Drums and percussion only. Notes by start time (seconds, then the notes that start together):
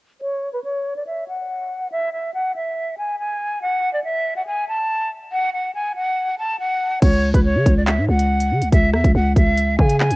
7.02 kick, closed hi-hat, crash
7.34 kick, closed hi-hat
7.66 kick, closed hi-hat
7.87 clap, closed hi-hat
8.19 closed hi-hat
8.40 closed hi-hat
8.62 closed hi-hat
8.72 kick, closed hi-hat
8.94 cross-stick
9.04 kick, closed hi-hat
9.36 kick, closed hi-hat
9.57 closed hi-hat
9.79 kick
9.89 closed hi-hat
10.00 clap
10.10 closed hi-hat